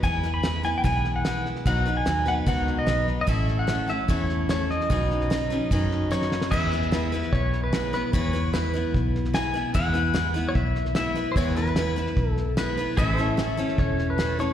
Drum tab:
CC |----------------|----------------|----------------|----------------|
HH |----p-------p---|----p-------p---|----p-------p---|----p-------p---|
SD |o-o-o-o-o-o-o-oo|o-o-o-o-o-o-o-o-|o-o-o-o-o-o-o-oo|o-ooo-o-o-o-oooo|
BD |o-------o-------|o-------o-------|o-------o-------|o-------o-------|

CC |x---------------|----------------|----------------|----------------|
HH |----p-------p---|----p-------p---|----p-------p---|----p-------p---|
SD |o-ooo-ooo-o-o-o-|o-o-o-o-o-ooo-o-|o-o-o-o-o-ooo-o-|o-ooo-ooo-o-o-o-|
BD |o-------o-------|o-------o-------|o-------o-------|o-------o-------|

CC |----------------|
HH |----p-------p---|
SD |o-o-o-ooo-o-o-o-|
BD |o-------o-------|